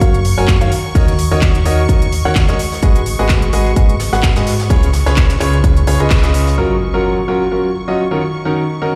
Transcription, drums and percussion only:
0.01 kick, closed hi-hat
0.14 closed hi-hat
0.25 closed hi-hat, open hi-hat
0.37 closed hi-hat
0.48 kick, snare, clap, closed hi-hat
0.61 closed hi-hat
0.71 snare, closed hi-hat, open hi-hat
0.95 kick, closed hi-hat, open hi-hat
1.08 closed hi-hat
1.19 closed hi-hat, open hi-hat
1.42 kick, snare, clap, closed hi-hat
1.55 closed hi-hat
1.65 closed hi-hat, open hi-hat
1.77 closed hi-hat
1.88 kick, closed hi-hat
2.02 closed hi-hat
2.12 closed hi-hat, open hi-hat
2.35 kick, snare, clap, closed hi-hat
2.48 snare, closed hi-hat
2.59 closed hi-hat, open hi-hat
2.72 snare, open hi-hat
2.83 kick, closed hi-hat
2.95 closed hi-hat
3.06 closed hi-hat, open hi-hat
3.29 kick, snare, clap, closed hi-hat
3.42 closed hi-hat
3.53 closed hi-hat, open hi-hat
3.66 closed hi-hat
3.76 kick, closed hi-hat
3.89 closed hi-hat
3.99 snare, closed hi-hat, open hi-hat
4.13 snare, closed hi-hat
4.23 kick, snare, clap, closed hi-hat
4.35 snare, closed hi-hat
4.46 snare, closed hi-hat, open hi-hat
4.59 snare, closed hi-hat
4.70 kick, closed hi-hat, open hi-hat
4.83 closed hi-hat
4.93 snare, closed hi-hat, open hi-hat
5.06 snare, closed hi-hat
5.16 kick, snare, clap, closed hi-hat
5.29 snare, closed hi-hat
5.40 clap, closed hi-hat, open hi-hat
5.53 closed hi-hat
5.64 kick, closed hi-hat
5.77 closed hi-hat
5.87 closed hi-hat, open hi-hat
6.00 closed hi-hat
6.10 kick, snare, clap, closed hi-hat
6.23 snare, closed hi-hat
6.34 closed hi-hat, open hi-hat
6.47 snare, open hi-hat

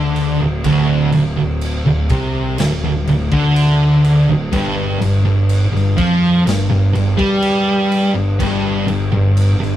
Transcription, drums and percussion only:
0.16 crash
0.64 kick, crash
1.12 crash
1.61 crash
2.09 kick, crash
2.58 snare, crash
3.07 crash
3.32 kick
3.56 crash
4.04 crash
4.53 kick, crash
5.02 crash
5.49 crash
5.76 snare
5.98 kick, crash
6.47 snare, crash
6.95 crash
7.19 kick
7.42 crash
7.92 crash
8.40 kick, crash
8.88 crash
9.37 crash
9.62 snare

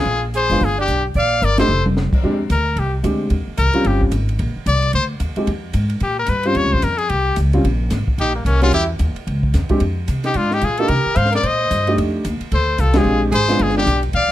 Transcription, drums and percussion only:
0.34 closed hi-hat
0.50 open hi-hat
0.61 kick, open hi-hat
0.88 closed hi-hat
1.14 kick, open hi-hat
1.42 closed hi-hat
1.58 snare, ride
1.86 mid tom
1.97 snare
2.13 kick, crash
2.24 kick
2.50 kick, hi-hat pedal, ride
2.77 kick, ride
3.04 kick, hi-hat pedal, ride
3.30 kick, ride
3.58 kick, hi-hat pedal, ride
3.73 ride
3.84 kick, ride
4.01 kick
4.12 kick, hi-hat pedal, ride
4.29 ride
4.39 kick, ride
4.66 kick, hi-hat pedal, ride
4.82 ride
4.93 kick, ride
5.20 kick, hi-hat pedal, ride
5.36 ride
5.47 kick, ride
5.73 kick, hi-hat pedal, ride
5.90 ride
6.00 kick, ride
6.26 kick, hi-hat pedal, ride
6.43 ride
6.55 kick, ride
6.82 kick, hi-hat pedal, ride
6.98 ride
7.09 kick, ride
7.36 kick, hi-hat pedal, ride
7.53 ride
7.65 kick, ride
7.90 kick, snare, hi-hat pedal, ride
8.08 kick
8.18 kick, ride
8.46 kick, hi-hat pedal, ride
8.62 snare, ride
8.73 kick, ride
8.99 kick, hi-hat pedal, ride
9.16 ride
9.27 kick, ride
9.43 kick
9.54 kick, snare, hi-hat pedal, ride
9.69 kick, ride
9.80 kick, ride
10.08 kick, hi-hat pedal, ride
10.24 snare, ride
10.34 kick, ride
10.51 snare
10.61 kick, hi-hat pedal, ride
10.77 ride
10.88 kick, ride
11.16 kick, hi-hat pedal, ride
11.25 snare
11.33 snare, ride
11.43 kick, ride
11.71 kick, hi-hat pedal, ride
11.87 ride
11.98 kick, ride
12.25 kick, hi-hat pedal, ride
12.41 ride
12.52 kick, ride
12.78 kick, hi-hat pedal, ride
12.93 snare, ride
13.32 kick, hi-hat pedal, ride
13.49 snare, ride
13.59 kick, ride
13.69 snare
13.78 snare
13.87 kick, hi-hat pedal, ride
14.03 ride
14.13 kick, ride

